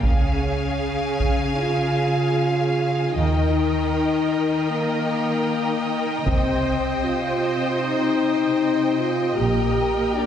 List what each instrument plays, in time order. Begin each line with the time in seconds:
0.03 double bass section C#2, cello section C#3, french horn section C#4, viola section G#4, violin section F5 G#5, taiko
1.20 taiko
1.59 french horn section F4
3.14 double bass section D#2, cello section D#3, french horn section D#4, viola section A#4, violin section D#5 G5
4.69 french horn section A#3
6.24 double bass section C2, cello section C3, french horn section C4, viola section C5, taiko
7.03 french horn section F4
7.81 french horn section D#4
8.98 french horn section F4
9.36 double bass section A#1, cello section A#2, french horn section G4, viola section A#4, violin section G5
10.15 french horn section D4, violin section D5